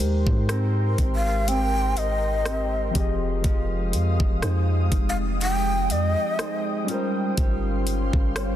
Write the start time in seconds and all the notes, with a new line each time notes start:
Already playing: G#3 C4 D#4 G4 A#4 C5 G5 C6
0.00 D#2, closed hi-hat
0.27 G#2, kick
0.49 C4 G4 A#4, cross-stick, closed hi-hat
0.98 G#1 C4, kick, closed hi-hat
1.16 F5
1.48 C4 G5, closed hi-hat
1.97 D#5, closed hi-hat
2.46 C4 G4 A#4, cross-stick, closed hi-hat
2.91 F3 C4
2.95 F1 F3 G#3 G4 G#4 F5 D#6, kick, closed hi-hat
3.00 D#5
3.44 F1 F3, kick, closed hi-hat
3.93 F2, closed hi-hat
4.20 F1, kick
4.42 F2 D#4 G#4 C5, cross-stick, closed hi-hat
4.92 F1 D#4 G5, kick, closed hi-hat
5.09 F5
5.41 D#4 G5, closed hi-hat
5.90 F2 D#5, closed hi-hat
6.39 D#4 G#4 C5, cross-stick, closed hi-hat
6.84 G3 C#4
6.88 G3 C#4 F4 G4 A#4 F5 C6, closed hi-hat
6.93 C5
7.37 G1 G3, kick, closed hi-hat
7.87 closed hi-hat
8.13 G1, kick
8.36 C#4 G4 C5, cross-stick, closed hi-hat